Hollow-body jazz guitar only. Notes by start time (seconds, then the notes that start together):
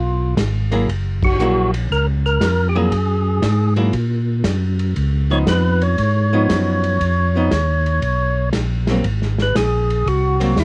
0.71 F#3 A#3 E4 G#4
1.40 F#3 A#3 E4 G#4
2.75 F#3 A#3 E4 G#4
3.76 F#3 A#3 E4 G#4
5.30 F3 B3 D#4
6.33 F3 B3 D#4
7.35 F3 B3 D#4
8.89 F#3 A#3 C4
10.40 F#3 A#3 C4